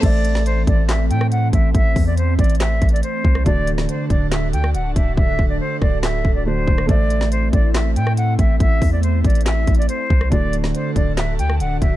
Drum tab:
CC |x-----------------------------------------------------------------------------------------------|------------------------------------------------------------------------------------------------|------------------------------------------------------------------------------------------------|------------------------------------------------------------------------------------------------|
HH |x-----------x-----------x-----------x-----------x-----------x-----------x-----------x-----------|x-----------o-----------x-----------x--x--x--x--x-----------x---x---x---x-----------------------|x-----------x-----------x-----------x-----------x-----------x-----------x-----------x-----------|------------------------------------------------------------------------------------------------|
CP |------------------------------------------------x-----------------------------------------------|------------------------------------------------x-----------------------------------------------|------------------------------------------------x-----------------------------------------------|------------------------------------------------x-----------------------------------------------|
SD |------------------o-----------------------------o-----------------r-----------------------------|------------------------------------------------o-----------------------------------------r-----|------------------o-----------------------------o-----------------r-----------------------------|------------------------------------r-----------o-----------------------------------------r-----|
BD |o-----------------------------------o-----------------------------------------------o-----------|o-----------o-----------------------o-----------------------o-----------------------o-----------|o-----------------------------------o-----------------------------------------------o-----------|o-----------o-----------------------o-----------------------o-----------------------o-----------|

CC |------------------------------------------------------------------------------------------------|------------------------------------------------------------------------------------------------|------------------------------------------------------------------------------------------------|
HH |x-----------x-----------x-----------x-----------x-----------x-----------x-----------x-----------|x-----------o-----------x-----------x--x--x--x--x-----------x---x---x---x-----------------------|x-----------x-----------x-----------x-----------x-----------x-----------x-----------x-----------|
CP |------------------------------------------------x-----------------------------------------------|------------------------------------------------x-----------------------------------------------|------------------------------------------------x-----------------------------------------------|
SD |------------------o-----------------------------o-----------------r-----------------------------|------------------------------------------------o-----------------------------------------r-----|------------------o-----------------------------o-----------------r-----------------------------|
BD |o-----------------------------------o-----------------------------------------------o-----------|o-----------o-----------------------o-----------------------o-----------------------o-----------|o-----------------------------------o-----------------------------------------------o-----------|